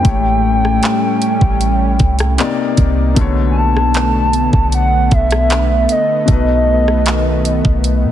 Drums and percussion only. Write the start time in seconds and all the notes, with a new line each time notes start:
0.05 kick, closed hi-hat
0.65 cross-stick
0.83 clap, closed hi-hat
1.22 closed hi-hat
1.41 kick
1.61 closed hi-hat
1.99 kick, closed hi-hat
2.19 cross-stick, closed hi-hat
2.38 clap, closed hi-hat
2.77 kick, closed hi-hat
3.16 kick, closed hi-hat
3.77 cross-stick
3.94 clap, closed hi-hat
4.33 closed hi-hat
4.53 kick
4.72 closed hi-hat
5.11 kick, closed hi-hat
5.31 cross-stick, closed hi-hat
5.50 clap, closed hi-hat
5.89 closed hi-hat
6.28 kick, closed hi-hat
6.88 cross-stick
7.06 clap, closed hi-hat
7.45 closed hi-hat
7.65 kick
7.84 closed hi-hat